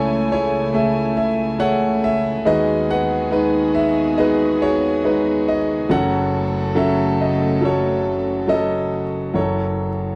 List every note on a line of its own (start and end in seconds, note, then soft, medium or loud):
0.00 2.41 C#2 medium
0.00 2.41 C#3 medium
0.00 0.73 A3 medium
0.00 2.42 A3 medium
0.00 0.33 E4 medium
0.00 2.41 E4 medium
0.00 0.32 G#4 medium
0.00 0.70 A4 medium
0.00 0.32 C#5 medium
0.00 0.75 E5 medium
0.00 2.41 G#5 medium
0.32 2.00 E4 medium
0.32 0.72 G#4 medium
0.32 1.19 C#5 medium
0.73 1.27 A3 medium
0.73 1.27 G#4 soft
0.73 1.15 E5 medium
1.17 1.56 E5 medium
1.59 2.13 A3 medium
1.59 2.13 G#4 medium
1.59 2.13 C#5 medium
1.59 1.99 F#5 medium
2.04 2.47 E5 medium
2.44 5.86 D#2 medium
2.44 5.86 D#3 medium
2.44 2.99 G#3 medium
2.44 5.85 B3 medium
2.44 2.99 D#4 medium
2.44 9.31 F#4 medium
2.44 5.86 G#4 medium
2.44 2.91 B4 medium
2.44 2.90 D#5 loud
2.49 4.15 F#4 medium
2.49 4.15 G#4 medium
2.90 3.31 B4 medium
2.90 3.71 F#5 medium
3.31 3.85 G#3 medium
3.31 3.85 D#4 medium
3.31 3.86 B4 medium
3.75 4.18 E5 medium
4.18 4.72 G#3 medium
4.18 4.72 D#4 medium
4.18 4.62 F#4 medium
4.18 4.62 G#4 medium
4.18 4.73 B4 medium
4.18 4.62 D#5 medium
4.62 5.87 F#4 medium
4.62 5.87 G#4 soft
4.62 5.50 C#5 medium
5.04 5.57 G#3 medium
5.04 5.58 D#4 medium
5.04 5.58 B4 medium
5.48 5.92 D#5 medium
5.89 9.31 F#1 medium
5.89 9.31 F#2 medium
5.89 9.31 C#3 medium
5.89 6.43 F#3 medium
5.89 9.32 A3 medium
5.89 6.44 C#4 medium
5.89 9.31 A4 medium
5.89 6.44 A4 medium
5.89 7.59 C#5 medium
5.89 6.79 F#5 medium
6.75 7.29 F#3 medium
6.75 7.30 C#4 medium
6.75 7.30 A4 medium
6.75 7.17 E5 medium
7.21 7.64 D#5 medium
7.61 8.16 F#3 medium
7.61 8.16 C#4 medium
7.61 7.64 A4 medium
7.65 9.33 F#4 medium
7.65 8.47 A4 medium
7.65 8.89 C#5 medium
8.48 9.02 F#3 medium
8.48 9.03 C#4 medium
8.48 8.50 A4 medium
8.48 9.38 D#5 medium
8.52 9.32 A4 medium
9.34 10.15 F#1 soft
9.34 10.15 F#2 soft
9.34 9.89 F#3 medium
9.34 9.89 E4 soft
9.34 9.37 A4 medium
9.34 10.15 C#5 medium
9.38 10.15 A4 medium